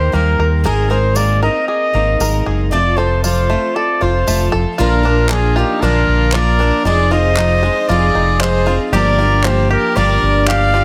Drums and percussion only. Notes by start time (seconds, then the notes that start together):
1.16 tambourine
2.20 tambourine
3.24 tambourine
4.28 tambourine
5.29 clap
6.32 clap
7.37 clap
8.41 clap
9.44 clap
10.47 clap